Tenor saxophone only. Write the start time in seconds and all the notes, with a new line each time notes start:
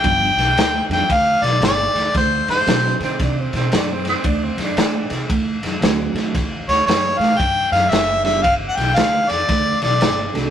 3.04 C4
3.22 D4
3.40 C4
3.56 C4
3.73 D4
3.92 C4
4.09 C4
4.26 D4
4.43 C4
4.63 D4